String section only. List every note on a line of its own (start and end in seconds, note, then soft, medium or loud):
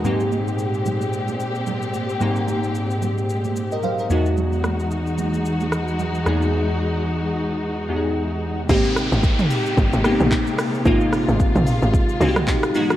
0.00 4.06 G#3 medium
0.05 4.06 A#2 medium
0.05 4.06 C4 medium
0.05 4.06 G4 medium
4.10 8.66 E3 medium
4.10 8.66 G#3 medium
4.10 8.66 D#4 medium
4.10 8.66 F#4 medium
8.70 12.71 C3 medium
8.70 12.97 G#3 medium
8.70 12.71 A#3 medium
8.70 10.84 G4 medium
10.86 12.73 F4 medium
12.75 12.97 E3 medium
12.75 12.97 D#4 medium
12.75 12.97 F#4 medium